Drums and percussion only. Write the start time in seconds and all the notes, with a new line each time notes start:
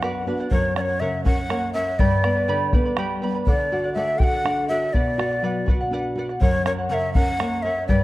0.03 bombo rim
0.15 bombo rim
0.51 bombo low
0.64 bombo rim
0.76 bombo rim
1.01 bombo rim
1.26 bombo rim, bombo low
1.50 bombo rim
1.99 bombo low
2.12 bombo rim
2.24 bombo rim
2.48 bombo rim
2.73 bombo rim, bombo low
2.97 bombo rim
3.47 bombo low
3.59 bombo rim
3.96 bombo rim
4.20 bombo rim, bombo low
4.46 bombo rim
4.94 bombo rim, bombo low
5.08 bombo rim
5.19 bombo rim
5.31 bombo rim
5.44 bombo rim
5.68 bombo rim, bombo low
6.29 bombo rim
6.42 bombo low
6.55 bombo rim
6.66 bombo rim
6.91 bombo rim
7.15 bombo rim, bombo low
7.40 bombo rim
7.89 bombo low
8.01 bombo rim